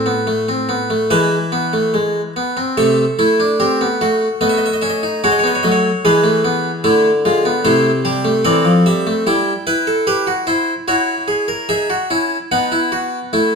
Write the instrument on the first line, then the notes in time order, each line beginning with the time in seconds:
harpsichord
Already playing: A2 A4 E5
0.06 B3
0.27 A3
0.49 C4
0.69 B3
0.90 A3
1.10 E3 G#3 B4 E5
1.52 B3
1.73 A3
1.94 G#3
2.36 B3
2.57 C4
2.77 C3 A3 A4 E5
3.19 A3 E4
3.40 D4
3.60 C4 G4
3.81 B3
4.01 A3 F#4
4.41 A3 B3 D#5
4.49 E5
4.57 D#5
4.66 E5
4.73 D#5
4.82 C#4 E5
4.89 D#5
5.03 D#4
5.24 G#3 C#4 F#4 C#5
5.31 D#5
5.39 C#5
5.44 B3 D#5
5.55 C#5
5.63 F#3 A3 D#5
5.72 C#5
6.05 E3 G#3 G#4 B4
6.24 A3
6.44 B3
6.84 D3 A3 E4
7.25 G#3 F4
7.45 B3
7.65 C3 A3 E4 C5
8.05 G3 G4
8.25 A3
8.45 E3 C4 A4 D5
8.65 F3
8.86 G3 E5
9.07 A3
9.27 G3 E4 G5
9.67 E4 B4
9.87 A4
10.07 G4 B4
10.27 F#4
10.47 E4 C5
10.88 E4 F#4 C#5
11.28 G#4
11.48 A#4
11.69 D#4 G#4 E5
11.90 F#4
12.10 C#4 E4
12.52 B3 D#4 F#5
12.72 E4
12.92 F#4
13.33 A3 E4